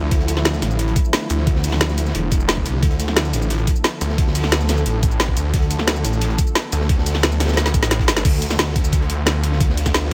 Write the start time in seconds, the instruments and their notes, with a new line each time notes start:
Already playing: detuned saw bass D2, synth drone D3 F3 A3 E4
0.11 detuned saw bass D2, kick, closed hi-hat
0.20 closed hi-hat
0.28 closed hi-hat, shaker
0.37 snare
0.45 snare, closed hi-hat
0.54 shaker
0.62 detuned saw bass A1, snare, closed hi-hat, shaker
0.71 shaker
0.79 closed hi-hat
0.88 closed hi-hat
0.96 kick, closed hi-hat, shaker
1.05 shaker
1.13 snare, closed hi-hat
1.29 detuned saw bass D2, closed hi-hat, shaker
1.38 snare
1.47 kick, closed hi-hat
1.55 snare
1.64 detuned saw bass D2, closed hi-hat, open hi-hat, shaker
1.72 snare
1.80 snare, closed hi-hat
1.89 snare, shaker
1.98 closed hi-hat, shaker
2.06 snare, shaker
2.15 detuned saw bass E1, closed hi-hat
2.32 kick, closed hi-hat, shaker
2.40 shaker
2.48 snare, closed hi-hat
2.57 kick
2.66 detuned saw bass C2, closed hi-hat, shaker
2.83 detuned saw bass D2, synth drone A4, kick, closed hi-hat
2.91 closed hi-hat
3.00 closed hi-hat, shaker
3.08 snare
3.16 snare, closed hi-hat
3.25 shaker
3.33 detuned saw bass A1, closed hi-hat, shaker
3.42 shaker
3.50 closed hi-hat
3.58 closed hi-hat
3.67 kick, closed hi-hat, shaker
3.76 shaker
3.84 snare, closed hi-hat
4.01 detuned saw bass D2, closed hi-hat, shaker
4.09 snare
4.18 kick, closed hi-hat
4.27 snare
4.35 detuned saw bass D2, closed hi-hat, open hi-hat, shaker
4.44 snare
4.52 snare, closed hi-hat
4.61 snare, shaker
4.69 snare, closed hi-hat, shaker
4.77 shaker
4.86 detuned saw bass A1, closed hi-hat
5.03 kick, closed hi-hat, shaker
5.11 shaker
5.20 snare, closed hi-hat
5.28 kick
5.37 detuned saw bass D2, closed hi-hat, shaker
5.54 detuned saw bass D2, kick, closed hi-hat
5.62 closed hi-hat
5.71 closed hi-hat, shaker
5.79 snare
5.87 snare, closed hi-hat
5.96 shaker
6.05 detuned saw bass A1, closed hi-hat, shaker
6.13 shaker
6.21 closed hi-hat
6.30 closed hi-hat
6.38 kick, closed hi-hat, shaker
6.47 shaker
6.55 snare, closed hi-hat
6.72 detuned saw bass D2, closed hi-hat, shaker
6.81 snare
6.89 kick, closed hi-hat
6.98 snare
7.06 detuned saw bass D2, closed hi-hat, open hi-hat, shaker
7.15 snare
7.23 snare, closed hi-hat
7.32 snare, shaker
7.40 snare, closed hi-hat, shaker
7.45 snare, closed hi-hat
7.48 snare, closed hi-hat, shaker
7.53 snare, closed hi-hat
7.57 detuned saw bass D2, snare, closed hi-hat
7.66 snare
7.74 detuned saw bass A1, kick, closed hi-hat, shaker
7.83 snare, closed hi-hat, shaker
7.90 snare, closed hi-hat
8.00 kick, closed hi-hat
8.08 snare, closed hi-hat, shaker
8.17 snare, closed hi-hat
8.25 detuned saw bass D2, synth drone D3 F3 A3 F4, kick, closed hi-hat, crash, shaker
8.33 closed hi-hat
8.42 closed hi-hat, shaker
8.50 snare, shaker
8.59 detuned saw bass D2, snare, closed hi-hat, shaker
8.76 kick, closed hi-hat
8.84 shaker
8.92 kick, closed hi-hat, shaker
9.02 closed hi-hat
9.10 closed hi-hat
9.26 snare, closed hi-hat, shaker
9.44 closed hi-hat
9.52 snare
9.61 kick, closed hi-hat, shaker
9.70 snare
9.77 closed hi-hat, open hi-hat, shaker
9.86 kick, snare, shaker
9.94 detuned saw bass D2, snare, closed hi-hat, shaker
10.03 snare